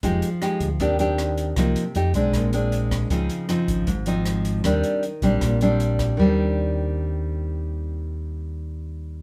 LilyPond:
<<
  \new Staff \with { instrumentName = "Nylon-string guitar" } { \time 4/4 \key ees \major \tempo 4 = 156 << { <aes ees' g'>8 r8 <aes ees' g'>8 r8 <c' d' g'>8 <c' d' g'>4. | <f bes ees'>8 r8 <a ees' g'>8 <aes c' d'>4 <aes c' d'>4. | <f c' ees'>4 <f c' ees'>4 r8 <f c' ees'>4. | <g c' d'>4 r8 <g c' d'>4 <g c' d'>4. |
<ees g c' d'>1~ | <ees g c' d'>1 | } \\ { f2 ees2 | c4 r4 bes,2 | des2 aes,2 | ees2 bes,2 |
r1 | r1 | } >> }
  \new Staff \with { instrumentName = "Fingered electric bass" } { \clef bass \time 4/4 \key ees \major f,,8 r4 d,8 ees,2 | c,8 r8 f,8 ces,8 bes,,2 | des,8 r4 aes,,8 aes,,2 | ees,8 r4 bes,,8 bes,,2 |
ees,1~ | ees,1 | }
  \new DrumStaff \with { instrumentName = "Drums" } \drummode { \time 4/4 <hh bd>8 hh8 <hh ss>8 <hh bd>8 <hh bd>8 hh8 <hh ss>8 hh8 | <hh bd ss>8 hh8 hh8 <hh bd>8 <hh bd ss>8 hh8 hh8 <hh bd ss>8 | <hh bd>8 hh8 <hh ss>8 <hh bd>8 <hh bd>8 hh8 <hh ss>8 hh8 | <hh bd ss>8 hh8 hh8 <hh bd>8 <hh bd ss>8 hh8 hh8 <hh bd ss>8 |
r4 r4 r4 r4 | r4 r4 r4 r4 | }
>>